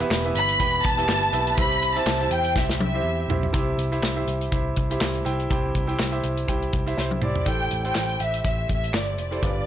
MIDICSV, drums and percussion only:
0, 0, Header, 1, 2, 480
1, 0, Start_track
1, 0, Key_signature, 0, "minor"
1, 0, Tempo, 490597
1, 1548, Time_signature, 4, 2, 24, 8
1, 9455, End_track
2, 0, Start_track
2, 0, Title_t, "Drums"
2, 3, Note_on_c, 9, 42, 42
2, 101, Note_off_c, 9, 42, 0
2, 109, Note_on_c, 9, 38, 94
2, 110, Note_on_c, 9, 39, 71
2, 207, Note_off_c, 9, 38, 0
2, 208, Note_off_c, 9, 39, 0
2, 240, Note_on_c, 9, 42, 34
2, 338, Note_off_c, 9, 42, 0
2, 346, Note_on_c, 9, 42, 69
2, 444, Note_off_c, 9, 42, 0
2, 479, Note_on_c, 9, 42, 53
2, 576, Note_off_c, 9, 42, 0
2, 585, Note_on_c, 9, 36, 75
2, 585, Note_on_c, 9, 42, 73
2, 683, Note_off_c, 9, 36, 0
2, 683, Note_off_c, 9, 42, 0
2, 823, Note_on_c, 9, 42, 79
2, 829, Note_on_c, 9, 36, 96
2, 921, Note_off_c, 9, 42, 0
2, 927, Note_off_c, 9, 36, 0
2, 965, Note_on_c, 9, 42, 62
2, 1063, Note_off_c, 9, 42, 0
2, 1063, Note_on_c, 9, 38, 118
2, 1065, Note_on_c, 9, 39, 90
2, 1161, Note_off_c, 9, 38, 0
2, 1163, Note_off_c, 9, 39, 0
2, 1202, Note_on_c, 9, 42, 35
2, 1300, Note_off_c, 9, 42, 0
2, 1302, Note_on_c, 9, 42, 73
2, 1400, Note_off_c, 9, 42, 0
2, 1439, Note_on_c, 9, 42, 57
2, 1537, Note_off_c, 9, 42, 0
2, 1542, Note_on_c, 9, 42, 107
2, 1544, Note_on_c, 9, 36, 127
2, 1639, Note_off_c, 9, 42, 0
2, 1642, Note_off_c, 9, 36, 0
2, 1683, Note_on_c, 9, 42, 34
2, 1780, Note_off_c, 9, 42, 0
2, 1787, Note_on_c, 9, 42, 62
2, 1885, Note_off_c, 9, 42, 0
2, 1921, Note_on_c, 9, 42, 44
2, 2018, Note_off_c, 9, 42, 0
2, 2024, Note_on_c, 9, 38, 93
2, 2026, Note_on_c, 9, 39, 83
2, 2122, Note_off_c, 9, 38, 0
2, 2124, Note_off_c, 9, 39, 0
2, 2156, Note_on_c, 9, 42, 33
2, 2254, Note_off_c, 9, 42, 0
2, 2259, Note_on_c, 9, 42, 72
2, 2357, Note_off_c, 9, 42, 0
2, 2395, Note_on_c, 9, 42, 49
2, 2493, Note_off_c, 9, 42, 0
2, 2502, Note_on_c, 9, 36, 89
2, 2502, Note_on_c, 9, 38, 53
2, 2600, Note_off_c, 9, 36, 0
2, 2600, Note_off_c, 9, 38, 0
2, 2636, Note_on_c, 9, 38, 56
2, 2734, Note_off_c, 9, 38, 0
2, 2744, Note_on_c, 9, 48, 71
2, 2842, Note_off_c, 9, 48, 0
2, 3227, Note_on_c, 9, 43, 94
2, 3325, Note_off_c, 9, 43, 0
2, 3358, Note_on_c, 9, 43, 77
2, 3456, Note_off_c, 9, 43, 0
2, 3463, Note_on_c, 9, 42, 94
2, 3464, Note_on_c, 9, 36, 113
2, 3560, Note_off_c, 9, 42, 0
2, 3562, Note_off_c, 9, 36, 0
2, 3707, Note_on_c, 9, 42, 66
2, 3804, Note_off_c, 9, 42, 0
2, 3843, Note_on_c, 9, 42, 39
2, 3941, Note_off_c, 9, 42, 0
2, 3946, Note_on_c, 9, 38, 88
2, 3947, Note_on_c, 9, 39, 65
2, 4043, Note_off_c, 9, 38, 0
2, 4045, Note_off_c, 9, 39, 0
2, 4184, Note_on_c, 9, 42, 61
2, 4282, Note_off_c, 9, 42, 0
2, 4318, Note_on_c, 9, 42, 44
2, 4416, Note_off_c, 9, 42, 0
2, 4424, Note_on_c, 9, 42, 62
2, 4425, Note_on_c, 9, 36, 87
2, 4522, Note_off_c, 9, 36, 0
2, 4522, Note_off_c, 9, 42, 0
2, 4661, Note_on_c, 9, 42, 62
2, 4668, Note_on_c, 9, 36, 80
2, 4759, Note_off_c, 9, 42, 0
2, 4766, Note_off_c, 9, 36, 0
2, 4804, Note_on_c, 9, 42, 52
2, 4902, Note_off_c, 9, 42, 0
2, 4903, Note_on_c, 9, 38, 103
2, 4905, Note_on_c, 9, 39, 89
2, 5001, Note_off_c, 9, 38, 0
2, 5002, Note_off_c, 9, 39, 0
2, 5042, Note_on_c, 9, 42, 27
2, 5140, Note_off_c, 9, 42, 0
2, 5148, Note_on_c, 9, 42, 61
2, 5245, Note_off_c, 9, 42, 0
2, 5282, Note_on_c, 9, 42, 40
2, 5380, Note_off_c, 9, 42, 0
2, 5386, Note_on_c, 9, 42, 89
2, 5387, Note_on_c, 9, 36, 115
2, 5484, Note_off_c, 9, 42, 0
2, 5485, Note_off_c, 9, 36, 0
2, 5626, Note_on_c, 9, 36, 73
2, 5630, Note_on_c, 9, 42, 56
2, 5724, Note_off_c, 9, 36, 0
2, 5728, Note_off_c, 9, 42, 0
2, 5762, Note_on_c, 9, 42, 39
2, 5860, Note_off_c, 9, 42, 0
2, 5865, Note_on_c, 9, 38, 86
2, 5866, Note_on_c, 9, 39, 65
2, 5963, Note_off_c, 9, 38, 0
2, 5964, Note_off_c, 9, 39, 0
2, 5997, Note_on_c, 9, 42, 31
2, 6095, Note_off_c, 9, 42, 0
2, 6102, Note_on_c, 9, 42, 62
2, 6200, Note_off_c, 9, 42, 0
2, 6237, Note_on_c, 9, 42, 45
2, 6334, Note_off_c, 9, 42, 0
2, 6344, Note_on_c, 9, 36, 70
2, 6344, Note_on_c, 9, 42, 66
2, 6442, Note_off_c, 9, 36, 0
2, 6442, Note_off_c, 9, 42, 0
2, 6481, Note_on_c, 9, 42, 30
2, 6579, Note_off_c, 9, 42, 0
2, 6584, Note_on_c, 9, 42, 60
2, 6588, Note_on_c, 9, 36, 77
2, 6682, Note_off_c, 9, 42, 0
2, 6686, Note_off_c, 9, 36, 0
2, 6727, Note_on_c, 9, 42, 50
2, 6825, Note_off_c, 9, 42, 0
2, 6825, Note_on_c, 9, 38, 46
2, 6923, Note_off_c, 9, 38, 0
2, 6959, Note_on_c, 9, 48, 48
2, 7057, Note_off_c, 9, 48, 0
2, 7060, Note_on_c, 9, 45, 68
2, 7158, Note_off_c, 9, 45, 0
2, 7196, Note_on_c, 9, 43, 76
2, 7294, Note_off_c, 9, 43, 0
2, 7300, Note_on_c, 9, 42, 90
2, 7301, Note_on_c, 9, 36, 107
2, 7398, Note_off_c, 9, 42, 0
2, 7399, Note_off_c, 9, 36, 0
2, 7543, Note_on_c, 9, 42, 64
2, 7641, Note_off_c, 9, 42, 0
2, 7678, Note_on_c, 9, 42, 35
2, 7776, Note_off_c, 9, 42, 0
2, 7780, Note_on_c, 9, 38, 78
2, 7781, Note_on_c, 9, 39, 63
2, 7877, Note_off_c, 9, 38, 0
2, 7879, Note_off_c, 9, 39, 0
2, 7915, Note_on_c, 9, 42, 27
2, 8013, Note_off_c, 9, 42, 0
2, 8022, Note_on_c, 9, 42, 65
2, 8120, Note_off_c, 9, 42, 0
2, 8158, Note_on_c, 9, 42, 45
2, 8256, Note_off_c, 9, 42, 0
2, 8263, Note_on_c, 9, 36, 82
2, 8268, Note_on_c, 9, 42, 60
2, 8361, Note_off_c, 9, 36, 0
2, 8366, Note_off_c, 9, 42, 0
2, 8505, Note_on_c, 9, 42, 56
2, 8507, Note_on_c, 9, 36, 72
2, 8603, Note_off_c, 9, 42, 0
2, 8605, Note_off_c, 9, 36, 0
2, 8647, Note_on_c, 9, 42, 51
2, 8745, Note_off_c, 9, 42, 0
2, 8747, Note_on_c, 9, 38, 102
2, 8748, Note_on_c, 9, 39, 82
2, 8844, Note_off_c, 9, 38, 0
2, 8846, Note_off_c, 9, 39, 0
2, 8985, Note_on_c, 9, 42, 50
2, 9083, Note_off_c, 9, 42, 0
2, 9122, Note_on_c, 9, 42, 38
2, 9220, Note_off_c, 9, 42, 0
2, 9224, Note_on_c, 9, 36, 120
2, 9225, Note_on_c, 9, 42, 88
2, 9321, Note_off_c, 9, 36, 0
2, 9323, Note_off_c, 9, 42, 0
2, 9455, End_track
0, 0, End_of_file